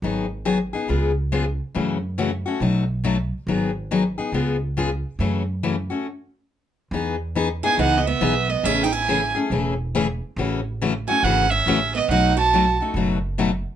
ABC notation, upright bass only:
X:1
M:4/4
L:1/8
Q:"Swing" 1/4=139
K:E
V:1 name="Upright bass" clef=bass
G,,,4 C,,4 | F,,4 B,,,4 | G,,,4 C,,4 | F,,4 z4 |
E,,4 C,,2 B,,,2 | A,,,4 E,,,4 | A,,,4 G,,,2 A,,,2 | B,,,4 F,,,4 |]